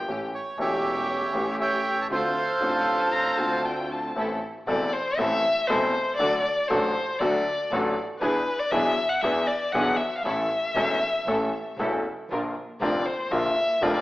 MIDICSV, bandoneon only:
0, 0, Header, 1, 2, 480
1, 0, Start_track
1, 0, Tempo, 509338
1, 75, Time_signature, 4, 2, 24, 8
1, 13206, End_track
2, 0, Start_track
2, 0, Title_t, "Bandoneon"
2, 0, Program_c, 0, 23
2, 326, Note_on_c, 0, 73, 57
2, 553, Note_off_c, 0, 73, 0
2, 567, Note_on_c, 0, 73, 48
2, 571, Note_on_c, 0, 67, 55
2, 578, Note_on_c, 0, 76, 71
2, 1472, Note_off_c, 0, 73, 0
2, 1473, Note_off_c, 0, 67, 0
2, 1477, Note_off_c, 0, 76, 0
2, 1514, Note_on_c, 0, 73, 61
2, 1517, Note_on_c, 0, 76, 58
2, 1533, Note_on_c, 0, 79, 79
2, 1886, Note_off_c, 0, 79, 0
2, 1899, Note_on_c, 0, 81, 76
2, 1945, Note_off_c, 0, 81, 0
2, 1954, Note_off_c, 0, 73, 0
2, 1955, Note_off_c, 0, 76, 0
2, 1999, Note_on_c, 0, 72, 57
2, 2005, Note_on_c, 0, 69, 61
2, 2026, Note_on_c, 0, 77, 75
2, 3408, Note_off_c, 0, 72, 0
2, 3411, Note_off_c, 0, 69, 0
2, 3421, Note_off_c, 0, 77, 0
2, 13206, End_track
0, 0, End_of_file